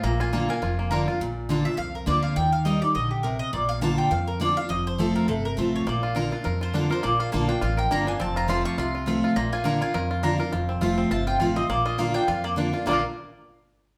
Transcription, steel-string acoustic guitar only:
0.04 A#2
0.33 D3 A#3 D4 F4
0.49 D4 F4
0.62 F2
0.91 D3 A#3 D4 F4
1.08 D4 F4
1.21 A#2
1.49 D3 A#3 D4 F4
1.65 D4 F4
1.77 F2
2.06 D3 A#3 D4 F4
2.36 D#3
2.65 G3 A#3 D#4 G4
2.82 D#4 G4
2.95 D3
3.24 C3
3.53 A#2
3.81 D3 A#3 D4 F4
4.11 F2
4.40 D3 A#3 D4 F4
4.56 D4 F4
4.69 F2
4.98 F3 A3 C4 F4
5.28 C3
5.57 F3 A3 C4 F4
5.87 A#2
6.15 D3 A#3 D4 F4
6.31 D4 F4
6.44 F2
6.74 D3 A#3 D4 F4
6.89 D4 F4
7.03 A#2
7.32 D3 A#3 D4 F4
7.49 D4 F4
7.62 F2
7.91 D3 A#3 D4 F4
8.07 D4 F4
8.20 F2
8.48 F3 A3 C4 F4
8.78 C3
9.06 F3 A3 C4 F4
9.36 A#2
9.64 D3 A#3 D4 F4
9.81 D4 F4
9.94 F2
10.23 D3 A#3 D4 F4
10.38 D4 F4
10.53 F2
10.81 F3 A3 C4 F4
11.11 C3
11.40 F3 A3 C4 F4
11.56 C4 F4
11.70 A#2
11.98 D3 A#3 D4 F4
12.14 D4 F4
12.28 F2
12.56 D3 A#3 D4 F4
12.73 D4 F4
12.86 A#2 D3 A#3 D4 F4

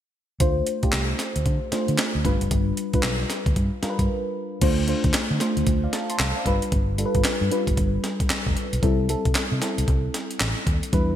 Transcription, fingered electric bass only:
0.40 D2
0.83 muted fingered electric bass stroke
0.93 C2
1.36 D2
1.46 D3
1.72 muted fingered electric bass stroke
1.89 D3
2.15 D2
2.25 G1
2.41 F#1
2.51 G1
2.94 muted fingered electric bass stroke
3.04 B1
3.46 D2
3.56 G2
3.83 muted fingered electric bass stroke
3.99 G2
4.62 D2
5.04 D2
5.14 muted fingered electric bass stroke
5.31 D3
5.57 D2
5.67 D2
6.20 C2
6.46 G1
6.72 G1
7.15 G1
7.25 muted fingered electric bass stroke
7.41 G2
7.67 G1
7.77 G1
8.30 muted fingered electric bass stroke
8.47 F1
8.73 B1
8.83 C2
9.26 C2
9.52 C3
9.78 C2
9.88 C2
10.40 A1
10.67 D#2
10.93 E2

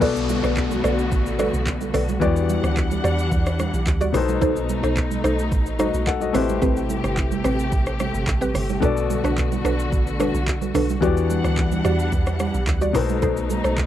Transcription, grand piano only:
0.00 B2 B3 F#4 A4 D5
2.20 E3 B3 F#4 G4
2.24 D5
4.13 B2 B3 D#4 A4 C5
5.79 F#4 D#5
6.07 A4 F#5
6.21 F#4 D#5
6.33 A3 E4 G4 B4 C5
8.80 B2 B3 F#4 A4
8.84 D5
11.01 E3 B3 F#4 G4 D5
12.93 B2 B3 D#4 A4
12.97 C5

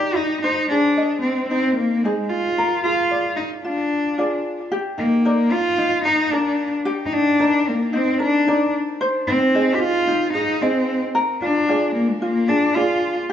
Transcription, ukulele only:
Already playing: D#4 G4 A#4 D5
0.44 C5
0.70 G#4
0.97 D#5
1.51 D#4
2.05 D#4 G#4 D#5
2.58 A#4
2.84 G#4
3.11 D5
3.64 F4
4.18 F4 G#4 D5
4.72 G4
4.98 D#4
5.25 D#4 A#4 D5
5.78 D#4
6.05 A#4
6.33 A#4 D5
6.85 G4
7.12 D#4
7.39 D#4 A#4 D5
7.93 D#4
8.20 A#4
8.47 D#4 A#4 D5
9.01 C5
9.27 D#4
9.54 D#4 G#4 D#5
10.07 D#4
10.34 G#4
10.61 D#4 G#4 D#5
11.15 A#4
11.42 F4
11.69 F4 G#4 D5
12.22 F4
12.48 G#4
12.76 F4 G#4 D5
13.29 G4

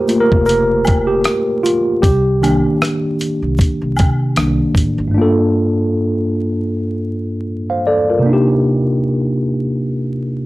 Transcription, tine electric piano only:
Already playing: A3 A#3 F4 G4 A#4 C5
0.08 A3 A#3 F4
0.20 A#4
0.46 A#4
1.07 G4
1.63 F4
2.02 G4
2.42 D#3 A#3 D4
4.36 D#3 A#3 D4
5.08 G2 A3
5.14 A#3 D4 F4
5.21 A4
7.70 C5 F5
7.87 A4 D5
8.10 F4 A#4
8.19 C3 A#3
8.26 D4 D#4
8.33 G4

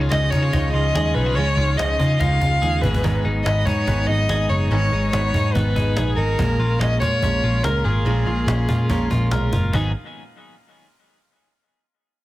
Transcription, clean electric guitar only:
Already playing: C#3 G#4
0.01 F4
0.12 D#4
0.33 D#4
0.43 F4
0.53 D#4
0.74 F4
0.95 G#4
1.17 D#4
1.26 F4
1.37 C#3
1.58 F4
1.78 D#4
1.99 F4
2.20 D#4
2.41 F4
2.62 G#4
2.83 G#2
3.04 G#2
3.25 D#4
3.46 B3
3.67 D#4
3.88 B3
4.09 D#4
4.29 G#4
4.51 D#4
4.72 G#2
4.93 D#4
5.13 B3
5.35 D#4
5.55 B3
5.76 D#4
5.97 G#4
6.18 D#4
6.39 A#2
6.60 F4
6.81 C#4
7.02 F4
7.23 C#4
7.44 F4
7.64 A#4
7.85 F4
8.06 A#2
8.27 F4
8.48 C#4
8.69 F4
8.90 C#4
9.11 F4
9.32 A#4
9.53 F4
9.73 G#2 D#3 F#3 B3 D#4 G#4

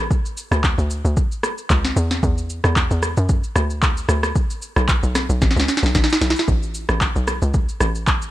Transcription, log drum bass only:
0.51 D2
0.78 D2
1.05 D2
1.70 C#2
1.96 E2
2.23 E2
2.64 E2
2.91 E2
3.17 F#2
3.56 D2
4.09 D2
4.77 B1
5.03 B1
5.29 B1
5.42 A1
5.56 C#2
5.83 B1
5.95 A1
6.21 B1
6.48 A1
6.89 A1
7.16 B1
7.42 C#2
7.81 A1

